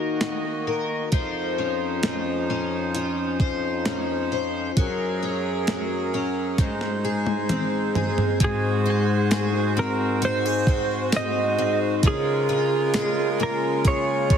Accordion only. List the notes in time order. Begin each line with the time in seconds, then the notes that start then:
Already playing: D#3 A#3 F#4 D#5
1.11 F2 F3 D#4 C5
4.78 F#2 F#3 G#4 A#4
6.59 G#2 G#3 D#4 C5
8.41 G#2 G#3 F#4 C5
12.02 C#3 F4 A#4
13.84 G#4